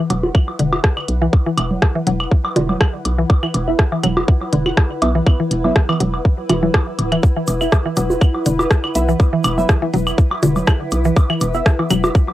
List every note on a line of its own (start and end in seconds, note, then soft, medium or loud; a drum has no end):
0.00 12.33 E4 medium
0.00 12.33 B4 medium
0.00 12.33 F#5 medium
0.10 0.30 E1 medium
0.10 0.13 F#3 medium
0.10 closed hi-hat medium
0.10 high woodblock soft
0.23 low bongo medium
0.35 kick loud
0.35 claves medium
0.48 high woodblock soft
0.59 0.79 E1 medium
0.59 0.62 D3 medium
0.59 closed hi-hat medium
0.73 low bongo soft
0.73 high woodblock medium
0.84 kick loud
0.84 cross-stick medium
0.97 claves medium
0.97 high woodblock soft
1.08 1.28 B1 medium
1.08 closed hi-hat medium
1.22 1.25 E3 medium
1.33 kick loud
1.33 high woodblock soft
1.46 1.50 E3 medium
1.58 1.77 E1 medium
1.58 closed hi-hat loud
1.58 claves medium
1.58 high woodblock medium
1.71 low conga medium
1.82 kick loud
1.82 cross-stick medium
1.82 high woodblock soft
1.95 1.99 E3 medium
2.07 2.27 E1 loud
2.07 2.09 F#3 medium
2.07 closed hi-hat loud
2.20 claves medium
2.20 high woodblock soft
2.31 kick loud
2.45 high woodblock medium
2.56 2.76 E1 medium
2.56 2.59 D3 medium
2.56 closed hi-hat medium
2.56 low bongo medium
2.69 low conga medium
2.69 high woodblock soft
2.81 kick loud
2.81 cross-stick loud
2.81 claves medium
3.05 3.25 B1 medium
3.05 closed hi-hat medium
3.05 high woodblock soft
3.18 3.22 E3 medium
3.30 kick loud
3.30 high woodblock medium
3.43 3.47 E3 medium
3.43 claves medium
3.54 3.74 E1 loud
3.54 closed hi-hat loud
3.54 high woodblock soft
3.68 3.78 B3 medium
3.68 3.78 E4 medium
3.68 3.78 E5 medium
3.79 kick loud
3.79 cross-stick medium
3.92 3.96 E3 medium
3.92 high woodblock soft
4.04 4.23 E1 loud
4.04 4.06 F#3 medium
4.04 closed hi-hat loud
4.04 claves medium
4.17 low bongo medium
4.17 high woodblock medium
4.28 kick loud
4.42 high woodblock soft
4.53 4.73 E1 medium
4.53 4.55 D3 medium
4.53 closed hi-hat medium
4.66 low bongo medium
4.66 claves medium
4.77 kick loud
4.77 cross-stick medium
4.77 high woodblock soft
5.02 5.22 B1 medium
5.02 5.09 B3 medium
5.02 5.09 E4 medium
5.02 5.09 E5 loud
5.02 closed hi-hat medium
5.02 high woodblock medium
5.15 5.19 E3 medium
5.27 kick loud
5.27 claves medium
5.27 high woodblock soft
5.40 5.44 E3 medium
5.51 5.71 E1 medium
5.51 closed hi-hat medium
5.64 5.75 B3 medium
5.64 5.75 E4 medium
5.64 5.75 E5 loud
5.64 low conga medium
5.64 high woodblock soft
5.76 kick loud
5.76 cross-stick medium
5.89 5.93 E3 medium
5.89 claves medium
5.89 high woodblock medium
6.00 6.20 E1 loud
6.00 6.03 F#3 medium
6.00 closed hi-hat loud
6.14 high woodblock soft
6.25 kick loud
6.49 6.69 E1 loud
6.49 6.52 E3 medium
6.49 closed hi-hat medium
6.49 low bongo medium
6.49 claves medium
6.49 high woodblock soft
6.63 6.66 E3 medium
6.63 low conga medium
6.74 kick loud
6.74 cross-stick medium
6.74 high woodblock medium
6.99 7.18 D1 medium
6.99 closed hi-hat medium
6.99 high woodblock soft
7.12 7.16 E3 medium
7.12 closed hi-hat soft
7.12 claves medium
7.23 kick loud
7.23 shaker soft
7.37 7.40 E3 medium
7.47 7.68 E1 loud
7.47 closed hi-hat medium
7.47 high woodblock soft
7.47 shaker medium
7.61 7.71 B3 medium
7.61 7.71 E4 medium
7.61 7.71 E5 medium
7.61 claves medium
7.61 shaker medium
7.72 kick loud
7.72 cross-stick medium
7.72 high woodblock medium
7.72 shaker soft
7.86 7.89 E3 medium
7.97 8.17 E1 loud
7.97 8.00 F#3 medium
7.97 closed hi-hat medium
7.97 high woodblock soft
7.97 shaker loud
8.10 low bongo medium
8.10 shaker medium
8.21 kick loud
8.21 claves medium
8.21 shaker soft
8.35 high woodblock soft
8.46 8.66 E1 medium
8.46 8.49 D3 medium
8.46 closed hi-hat medium
8.46 shaker medium
8.59 low bongo medium
8.59 high woodblock medium
8.59 shaker soft
8.71 kick loud
8.71 cross-stick medium
8.71 shaker soft
8.84 claves medium
8.84 high woodblock soft
8.95 9.15 B1 medium
8.95 9.03 B3 medium
8.95 9.03 E4 medium
8.95 9.03 E5 loud
8.95 closed hi-hat medium
8.95 shaker loud
9.09 9.11 E3 medium
9.09 shaker medium
9.20 kick loud
9.20 high woodblock soft
9.20 shaker soft
9.33 9.37 E3 medium
9.44 9.64 E1 medium
9.44 closed hi-hat medium
9.44 claves medium
9.44 high woodblock medium
9.44 shaker medium
9.58 9.68 B3 medium
9.58 9.68 E4 medium
9.58 9.68 E5 medium
9.58 low conga medium
9.58 shaker medium
9.69 kick loud
9.69 cross-stick medium
9.69 high woodblock soft
9.69 shaker soft
9.82 9.86 E3 medium
9.93 10.14 E1 loud
9.93 9.96 F#3 medium
9.93 closed hi-hat medium
9.93 shaker medium
10.07 claves medium
10.07 high woodblock soft
10.07 shaker soft
10.18 kick loud
10.18 shaker soft
10.31 high woodblock medium
10.43 10.63 E1 medium
10.43 10.45 D3 medium
10.43 closed hi-hat medium
10.43 low bongo medium
10.43 shaker medium
10.56 low conga medium
10.56 high woodblock soft
10.56 shaker medium
10.67 kick loud
10.67 cross-stick medium
10.67 claves medium
10.67 shaker soft
10.91 11.12 B1 medium
10.91 closed hi-hat medium
10.91 high woodblock soft
10.91 shaker medium
11.05 11.08 E3 medium
11.05 shaker soft
11.17 kick loud
11.17 high woodblock medium
11.17 shaker soft
11.30 11.34 E3 medium
11.30 claves medium
11.41 11.61 E1 loud
11.41 closed hi-hat medium
11.41 high woodblock soft
11.41 shaker medium
11.54 11.65 B3 medium
11.54 11.65 E4 medium
11.54 11.65 E5 medium
11.54 shaker soft
11.66 kick loud
11.66 cross-stick medium
11.66 shaker soft
11.79 11.83 E3 medium
11.79 high woodblock soft
11.90 12.10 E1 loud
11.90 11.93 F#3 medium
11.90 closed hi-hat medium
11.90 claves medium
11.90 shaker medium
12.04 low bongo medium
12.04 high woodblock medium
12.04 shaker medium
12.15 kick loud
12.15 shaker soft
12.28 high woodblock soft